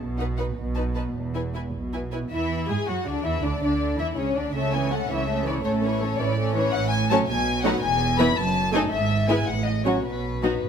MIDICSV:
0, 0, Header, 1, 6, 480
1, 0, Start_track
1, 0, Key_signature, 3, "major"
1, 0, Tempo, 381437
1, 15, Time_signature, 6, 3, 24, 8
1, 3855, Tempo, 365854
1, 8669, Key_signature, 4, "major"
1, 11535, Tempo, 378788
1, 13780, End_track
2, 0, Start_track
2, 0, Title_t, "Violin section"
2, 0, Program_c, 0, 48
2, 232, Note_on_c, 0, 78, 41
2, 311, Note_off_c, 0, 78, 0
2, 465, Note_on_c, 0, 78, 40
2, 545, Note_off_c, 0, 78, 0
2, 941, Note_on_c, 0, 81, 38
2, 1022, Note_off_c, 0, 81, 0
2, 1190, Note_on_c, 0, 81, 33
2, 1271, Note_off_c, 0, 81, 0
2, 1690, Note_on_c, 0, 80, 35
2, 1769, Note_off_c, 0, 80, 0
2, 1942, Note_on_c, 0, 80, 32
2, 2019, Note_off_c, 0, 80, 0
2, 2427, Note_on_c, 0, 80, 30
2, 2505, Note_off_c, 0, 80, 0
2, 2666, Note_on_c, 0, 80, 28
2, 2744, Note_off_c, 0, 80, 0
2, 2915, Note_on_c, 0, 76, 59
2, 3353, Note_off_c, 0, 76, 0
2, 3383, Note_on_c, 0, 80, 52
2, 3615, Note_off_c, 0, 80, 0
2, 3619, Note_on_c, 0, 78, 49
2, 3855, Note_off_c, 0, 78, 0
2, 3863, Note_on_c, 0, 74, 48
2, 4103, Note_off_c, 0, 74, 0
2, 4105, Note_on_c, 0, 76, 54
2, 4344, Note_off_c, 0, 76, 0
2, 4349, Note_on_c, 0, 74, 57
2, 4578, Note_off_c, 0, 74, 0
2, 4594, Note_on_c, 0, 74, 53
2, 5072, Note_off_c, 0, 74, 0
2, 5075, Note_on_c, 0, 76, 58
2, 5173, Note_off_c, 0, 76, 0
2, 5312, Note_on_c, 0, 73, 47
2, 5555, Note_off_c, 0, 73, 0
2, 5569, Note_on_c, 0, 74, 52
2, 5803, Note_on_c, 0, 76, 66
2, 5808, Note_off_c, 0, 74, 0
2, 6040, Note_off_c, 0, 76, 0
2, 6050, Note_on_c, 0, 80, 60
2, 6286, Note_on_c, 0, 78, 56
2, 6288, Note_off_c, 0, 80, 0
2, 6526, Note_off_c, 0, 78, 0
2, 6527, Note_on_c, 0, 76, 59
2, 7005, Note_on_c, 0, 74, 55
2, 7006, Note_off_c, 0, 76, 0
2, 7100, Note_off_c, 0, 74, 0
2, 7244, Note_on_c, 0, 73, 74
2, 7339, Note_off_c, 0, 73, 0
2, 7492, Note_on_c, 0, 73, 65
2, 7945, Note_on_c, 0, 74, 69
2, 7950, Note_off_c, 0, 73, 0
2, 8426, Note_off_c, 0, 74, 0
2, 8428, Note_on_c, 0, 73, 74
2, 8653, Note_on_c, 0, 78, 87
2, 8664, Note_off_c, 0, 73, 0
2, 8890, Note_on_c, 0, 80, 79
2, 8901, Note_off_c, 0, 78, 0
2, 9135, Note_off_c, 0, 80, 0
2, 9150, Note_on_c, 0, 81, 70
2, 9246, Note_off_c, 0, 81, 0
2, 9378, Note_on_c, 0, 80, 85
2, 9848, Note_off_c, 0, 80, 0
2, 9863, Note_on_c, 0, 78, 76
2, 10083, Note_on_c, 0, 80, 86
2, 10101, Note_off_c, 0, 78, 0
2, 10559, Note_off_c, 0, 80, 0
2, 10570, Note_on_c, 0, 83, 75
2, 10809, Note_on_c, 0, 81, 80
2, 10813, Note_off_c, 0, 83, 0
2, 11283, Note_on_c, 0, 80, 66
2, 11292, Note_off_c, 0, 81, 0
2, 11382, Note_off_c, 0, 80, 0
2, 11533, Note_on_c, 0, 76, 83
2, 11997, Note_off_c, 0, 76, 0
2, 12014, Note_on_c, 0, 80, 70
2, 12245, Note_on_c, 0, 78, 74
2, 12247, Note_off_c, 0, 80, 0
2, 12470, Note_on_c, 0, 75, 61
2, 12483, Note_off_c, 0, 78, 0
2, 12711, Note_on_c, 0, 73, 49
2, 12717, Note_off_c, 0, 75, 0
2, 12960, Note_off_c, 0, 73, 0
2, 12967, Note_on_c, 0, 71, 57
2, 13683, Note_off_c, 0, 71, 0
2, 13780, End_track
3, 0, Start_track
3, 0, Title_t, "Violin section"
3, 0, Program_c, 1, 48
3, 257, Note_on_c, 1, 71, 50
3, 330, Note_off_c, 1, 71, 0
3, 482, Note_on_c, 1, 71, 47
3, 558, Note_off_c, 1, 71, 0
3, 965, Note_on_c, 1, 71, 43
3, 1042, Note_off_c, 1, 71, 0
3, 1218, Note_on_c, 1, 71, 45
3, 1293, Note_off_c, 1, 71, 0
3, 1698, Note_on_c, 1, 71, 35
3, 1775, Note_off_c, 1, 71, 0
3, 1956, Note_on_c, 1, 71, 36
3, 2031, Note_off_c, 1, 71, 0
3, 2437, Note_on_c, 1, 71, 36
3, 2513, Note_off_c, 1, 71, 0
3, 2670, Note_on_c, 1, 71, 34
3, 2747, Note_off_c, 1, 71, 0
3, 2895, Note_on_c, 1, 64, 48
3, 3342, Note_off_c, 1, 64, 0
3, 3384, Note_on_c, 1, 68, 51
3, 3620, Note_off_c, 1, 68, 0
3, 3624, Note_on_c, 1, 66, 47
3, 3853, Note_off_c, 1, 66, 0
3, 3860, Note_on_c, 1, 62, 51
3, 4096, Note_off_c, 1, 62, 0
3, 4097, Note_on_c, 1, 64, 54
3, 4333, Note_on_c, 1, 62, 59
3, 4340, Note_off_c, 1, 64, 0
3, 4566, Note_off_c, 1, 62, 0
3, 4582, Note_on_c, 1, 62, 46
3, 5058, Note_on_c, 1, 64, 50
3, 5066, Note_off_c, 1, 62, 0
3, 5307, Note_on_c, 1, 61, 53
3, 5312, Note_off_c, 1, 64, 0
3, 5557, Note_off_c, 1, 61, 0
3, 5568, Note_on_c, 1, 62, 51
3, 5808, Note_off_c, 1, 62, 0
3, 5813, Note_on_c, 1, 61, 45
3, 5815, Note_on_c, 1, 69, 43
3, 6033, Note_off_c, 1, 61, 0
3, 6034, Note_off_c, 1, 69, 0
3, 6048, Note_on_c, 1, 73, 39
3, 6049, Note_on_c, 1, 64, 40
3, 6287, Note_off_c, 1, 64, 0
3, 6287, Note_off_c, 1, 73, 0
3, 6297, Note_on_c, 1, 61, 40
3, 6302, Note_on_c, 1, 69, 42
3, 6530, Note_on_c, 1, 64, 37
3, 6532, Note_off_c, 1, 61, 0
3, 6534, Note_off_c, 1, 69, 0
3, 6535, Note_on_c, 1, 73, 37
3, 6768, Note_off_c, 1, 64, 0
3, 6771, Note_off_c, 1, 73, 0
3, 6781, Note_on_c, 1, 61, 43
3, 6784, Note_on_c, 1, 69, 44
3, 6997, Note_off_c, 1, 61, 0
3, 6998, Note_off_c, 1, 69, 0
3, 7028, Note_on_c, 1, 64, 45
3, 7028, Note_on_c, 1, 73, 43
3, 7255, Note_off_c, 1, 64, 0
3, 7255, Note_off_c, 1, 73, 0
3, 7271, Note_on_c, 1, 69, 48
3, 7275, Note_on_c, 1, 61, 49
3, 7479, Note_off_c, 1, 69, 0
3, 7481, Note_off_c, 1, 61, 0
3, 7513, Note_on_c, 1, 73, 43
3, 7518, Note_on_c, 1, 64, 44
3, 7733, Note_off_c, 1, 73, 0
3, 7735, Note_off_c, 1, 64, 0
3, 7743, Note_on_c, 1, 69, 46
3, 7745, Note_on_c, 1, 61, 51
3, 7961, Note_on_c, 1, 73, 41
3, 7963, Note_on_c, 1, 64, 45
3, 7966, Note_off_c, 1, 69, 0
3, 7967, Note_off_c, 1, 61, 0
3, 8195, Note_off_c, 1, 73, 0
3, 8196, Note_off_c, 1, 64, 0
3, 8209, Note_on_c, 1, 69, 47
3, 8216, Note_on_c, 1, 61, 49
3, 8423, Note_off_c, 1, 69, 0
3, 8427, Note_off_c, 1, 61, 0
3, 8456, Note_on_c, 1, 64, 49
3, 8462, Note_on_c, 1, 73, 47
3, 8683, Note_off_c, 1, 64, 0
3, 8686, Note_off_c, 1, 73, 0
3, 9166, Note_on_c, 1, 61, 65
3, 9169, Note_on_c, 1, 73, 63
3, 9270, Note_off_c, 1, 61, 0
3, 9271, Note_off_c, 1, 73, 0
3, 9878, Note_on_c, 1, 71, 62
3, 9881, Note_on_c, 1, 63, 64
3, 9982, Note_off_c, 1, 71, 0
3, 9983, Note_off_c, 1, 63, 0
3, 10572, Note_on_c, 1, 64, 66
3, 10575, Note_on_c, 1, 71, 69
3, 10686, Note_off_c, 1, 64, 0
3, 10688, Note_off_c, 1, 71, 0
3, 11311, Note_on_c, 1, 69, 69
3, 11314, Note_on_c, 1, 63, 61
3, 11416, Note_off_c, 1, 69, 0
3, 11418, Note_off_c, 1, 63, 0
3, 12011, Note_on_c, 1, 71, 60
3, 12012, Note_on_c, 1, 64, 59
3, 12120, Note_off_c, 1, 64, 0
3, 12120, Note_off_c, 1, 71, 0
3, 12723, Note_on_c, 1, 61, 46
3, 12726, Note_on_c, 1, 66, 46
3, 12836, Note_off_c, 1, 61, 0
3, 12837, Note_off_c, 1, 66, 0
3, 13453, Note_on_c, 1, 63, 52
3, 13456, Note_on_c, 1, 66, 49
3, 13566, Note_off_c, 1, 63, 0
3, 13568, Note_off_c, 1, 66, 0
3, 13780, End_track
4, 0, Start_track
4, 0, Title_t, "Viola section"
4, 0, Program_c, 2, 48
4, 240, Note_on_c, 2, 63, 48
4, 317, Note_off_c, 2, 63, 0
4, 491, Note_on_c, 2, 63, 43
4, 566, Note_off_c, 2, 63, 0
4, 960, Note_on_c, 2, 63, 42
4, 1038, Note_off_c, 2, 63, 0
4, 1205, Note_on_c, 2, 63, 39
4, 1283, Note_off_c, 2, 63, 0
4, 1693, Note_on_c, 2, 64, 35
4, 1771, Note_off_c, 2, 64, 0
4, 1936, Note_on_c, 2, 64, 33
4, 2015, Note_off_c, 2, 64, 0
4, 2429, Note_on_c, 2, 64, 35
4, 2506, Note_off_c, 2, 64, 0
4, 2671, Note_on_c, 2, 64, 37
4, 2748, Note_off_c, 2, 64, 0
4, 2910, Note_on_c, 2, 64, 48
4, 3350, Note_off_c, 2, 64, 0
4, 3373, Note_on_c, 2, 68, 50
4, 3608, Note_on_c, 2, 66, 46
4, 3615, Note_off_c, 2, 68, 0
4, 3849, Note_off_c, 2, 66, 0
4, 3850, Note_on_c, 2, 62, 46
4, 4091, Note_on_c, 2, 64, 46
4, 4096, Note_off_c, 2, 62, 0
4, 4189, Note_off_c, 2, 64, 0
4, 4332, Note_on_c, 2, 62, 51
4, 4431, Note_off_c, 2, 62, 0
4, 4587, Note_on_c, 2, 62, 51
4, 5068, Note_off_c, 2, 62, 0
4, 5072, Note_on_c, 2, 64, 54
4, 5171, Note_off_c, 2, 64, 0
4, 5311, Note_on_c, 2, 61, 54
4, 5554, Note_off_c, 2, 61, 0
4, 5565, Note_on_c, 2, 62, 48
4, 5804, Note_on_c, 2, 57, 37
4, 5806, Note_off_c, 2, 62, 0
4, 5810, Note_off_c, 2, 57, 0
4, 5810, Note_on_c, 2, 57, 37
4, 6032, Note_off_c, 2, 57, 0
4, 6051, Note_on_c, 2, 52, 38
4, 6056, Note_on_c, 2, 61, 39
4, 6288, Note_on_c, 2, 57, 37
4, 6289, Note_off_c, 2, 52, 0
4, 6291, Note_off_c, 2, 61, 0
4, 6522, Note_on_c, 2, 52, 43
4, 6525, Note_on_c, 2, 61, 39
4, 6527, Note_off_c, 2, 57, 0
4, 6756, Note_on_c, 2, 57, 41
4, 6762, Note_off_c, 2, 57, 0
4, 6762, Note_on_c, 2, 57, 46
4, 6764, Note_off_c, 2, 52, 0
4, 6766, Note_off_c, 2, 61, 0
4, 6986, Note_off_c, 2, 57, 0
4, 6992, Note_on_c, 2, 52, 41
4, 6999, Note_on_c, 2, 61, 41
4, 7232, Note_on_c, 2, 57, 44
4, 7235, Note_off_c, 2, 57, 0
4, 7235, Note_on_c, 2, 57, 44
4, 7237, Note_off_c, 2, 52, 0
4, 7240, Note_off_c, 2, 61, 0
4, 7460, Note_off_c, 2, 57, 0
4, 7476, Note_on_c, 2, 61, 47
4, 7478, Note_on_c, 2, 52, 41
4, 7715, Note_off_c, 2, 61, 0
4, 7716, Note_off_c, 2, 52, 0
4, 7719, Note_on_c, 2, 57, 45
4, 7723, Note_off_c, 2, 57, 0
4, 7723, Note_on_c, 2, 57, 44
4, 7956, Note_off_c, 2, 57, 0
4, 7959, Note_on_c, 2, 61, 49
4, 7963, Note_on_c, 2, 52, 47
4, 8194, Note_off_c, 2, 61, 0
4, 8195, Note_on_c, 2, 57, 43
4, 8196, Note_off_c, 2, 52, 0
4, 8199, Note_off_c, 2, 57, 0
4, 8199, Note_on_c, 2, 57, 48
4, 8418, Note_off_c, 2, 57, 0
4, 8436, Note_on_c, 2, 52, 47
4, 8441, Note_on_c, 2, 61, 49
4, 8673, Note_off_c, 2, 52, 0
4, 8675, Note_off_c, 2, 61, 0
4, 9162, Note_on_c, 2, 57, 58
4, 9163, Note_on_c, 2, 54, 61
4, 9268, Note_off_c, 2, 54, 0
4, 9268, Note_off_c, 2, 57, 0
4, 9861, Note_on_c, 2, 54, 65
4, 9861, Note_on_c, 2, 57, 65
4, 9972, Note_off_c, 2, 57, 0
4, 9973, Note_off_c, 2, 54, 0
4, 10569, Note_on_c, 2, 52, 63
4, 10570, Note_on_c, 2, 59, 58
4, 10685, Note_off_c, 2, 52, 0
4, 10685, Note_off_c, 2, 59, 0
4, 11288, Note_on_c, 2, 57, 59
4, 11291, Note_on_c, 2, 63, 62
4, 11404, Note_off_c, 2, 57, 0
4, 11405, Note_off_c, 2, 63, 0
4, 12003, Note_on_c, 2, 59, 50
4, 12006, Note_on_c, 2, 56, 60
4, 12116, Note_off_c, 2, 59, 0
4, 12117, Note_off_c, 2, 56, 0
4, 12717, Note_on_c, 2, 54, 51
4, 12718, Note_on_c, 2, 61, 52
4, 12832, Note_off_c, 2, 54, 0
4, 12833, Note_off_c, 2, 61, 0
4, 13440, Note_on_c, 2, 54, 45
4, 13441, Note_on_c, 2, 59, 43
4, 13559, Note_off_c, 2, 54, 0
4, 13560, Note_off_c, 2, 59, 0
4, 13780, End_track
5, 0, Start_track
5, 0, Title_t, "Cello section"
5, 0, Program_c, 3, 48
5, 12, Note_on_c, 3, 47, 56
5, 602, Note_off_c, 3, 47, 0
5, 724, Note_on_c, 3, 47, 55
5, 1326, Note_off_c, 3, 47, 0
5, 1456, Note_on_c, 3, 40, 45
5, 2064, Note_off_c, 3, 40, 0
5, 2189, Note_on_c, 3, 47, 41
5, 2794, Note_off_c, 3, 47, 0
5, 2911, Note_on_c, 3, 52, 51
5, 3351, Note_off_c, 3, 52, 0
5, 3381, Note_on_c, 3, 56, 45
5, 3476, Note_off_c, 3, 56, 0
5, 3622, Note_on_c, 3, 54, 45
5, 3716, Note_off_c, 3, 54, 0
5, 3861, Note_on_c, 3, 50, 43
5, 4097, Note_off_c, 3, 50, 0
5, 4103, Note_on_c, 3, 52, 45
5, 4339, Note_off_c, 3, 52, 0
5, 4339, Note_on_c, 3, 50, 51
5, 4563, Note_off_c, 3, 50, 0
5, 4578, Note_on_c, 3, 50, 49
5, 5064, Note_off_c, 3, 50, 0
5, 5078, Note_on_c, 3, 52, 48
5, 5319, Note_on_c, 3, 49, 46
5, 5322, Note_off_c, 3, 52, 0
5, 5554, Note_on_c, 3, 50, 45
5, 5558, Note_off_c, 3, 49, 0
5, 5796, Note_off_c, 3, 50, 0
5, 5800, Note_on_c, 3, 49, 51
5, 6438, Note_off_c, 3, 49, 0
5, 6522, Note_on_c, 3, 49, 53
5, 7157, Note_off_c, 3, 49, 0
5, 7236, Note_on_c, 3, 45, 50
5, 7865, Note_off_c, 3, 45, 0
5, 7953, Note_on_c, 3, 45, 54
5, 8585, Note_off_c, 3, 45, 0
5, 8669, Note_on_c, 3, 45, 70
5, 9269, Note_off_c, 3, 45, 0
5, 9388, Note_on_c, 3, 47, 63
5, 9981, Note_off_c, 3, 47, 0
5, 10101, Note_on_c, 3, 40, 71
5, 10697, Note_off_c, 3, 40, 0
5, 10813, Note_on_c, 3, 42, 66
5, 11414, Note_off_c, 3, 42, 0
5, 11532, Note_on_c, 3, 44, 65
5, 12124, Note_off_c, 3, 44, 0
5, 12248, Note_on_c, 3, 45, 60
5, 12846, Note_off_c, 3, 45, 0
5, 12956, Note_on_c, 3, 47, 52
5, 13570, Note_off_c, 3, 47, 0
5, 13686, Note_on_c, 3, 45, 59
5, 13780, Note_off_c, 3, 45, 0
5, 13780, End_track
6, 0, Start_track
6, 0, Title_t, "Double bass section"
6, 0, Program_c, 4, 48
6, 14, Note_on_c, 4, 35, 55
6, 603, Note_off_c, 4, 35, 0
6, 717, Note_on_c, 4, 35, 51
6, 1322, Note_off_c, 4, 35, 0
6, 1439, Note_on_c, 4, 28, 40
6, 2055, Note_off_c, 4, 28, 0
6, 2188, Note_on_c, 4, 35, 38
6, 2794, Note_off_c, 4, 35, 0
6, 2905, Note_on_c, 4, 40, 42
6, 3348, Note_off_c, 4, 40, 0
6, 3381, Note_on_c, 4, 44, 44
6, 3476, Note_off_c, 4, 44, 0
6, 3630, Note_on_c, 4, 42, 38
6, 3722, Note_off_c, 4, 42, 0
6, 3854, Note_on_c, 4, 38, 49
6, 4093, Note_off_c, 4, 38, 0
6, 4105, Note_on_c, 4, 40, 50
6, 4336, Note_on_c, 4, 38, 46
6, 4340, Note_off_c, 4, 40, 0
6, 4569, Note_off_c, 4, 38, 0
6, 4584, Note_on_c, 4, 38, 43
6, 5067, Note_off_c, 4, 38, 0
6, 5069, Note_on_c, 4, 40, 49
6, 5317, Note_off_c, 4, 40, 0
6, 5320, Note_on_c, 4, 37, 46
6, 5559, Note_off_c, 4, 37, 0
6, 5564, Note_on_c, 4, 38, 53
6, 5801, Note_off_c, 4, 38, 0
6, 5801, Note_on_c, 4, 37, 47
6, 6439, Note_off_c, 4, 37, 0
6, 6525, Note_on_c, 4, 37, 43
6, 7159, Note_off_c, 4, 37, 0
6, 7245, Note_on_c, 4, 33, 54
6, 7870, Note_off_c, 4, 33, 0
6, 7960, Note_on_c, 4, 33, 46
6, 8589, Note_off_c, 4, 33, 0
6, 8671, Note_on_c, 4, 33, 62
6, 9270, Note_off_c, 4, 33, 0
6, 9394, Note_on_c, 4, 35, 54
6, 9984, Note_off_c, 4, 35, 0
6, 10099, Note_on_c, 4, 28, 60
6, 10697, Note_off_c, 4, 28, 0
6, 10814, Note_on_c, 4, 30, 62
6, 11414, Note_off_c, 4, 30, 0
6, 11525, Note_on_c, 4, 32, 65
6, 12121, Note_off_c, 4, 32, 0
6, 12239, Note_on_c, 4, 33, 47
6, 12841, Note_off_c, 4, 33, 0
6, 12958, Note_on_c, 4, 35, 49
6, 13571, Note_off_c, 4, 35, 0
6, 13687, Note_on_c, 4, 30, 45
6, 13780, Note_off_c, 4, 30, 0
6, 13780, End_track
0, 0, End_of_file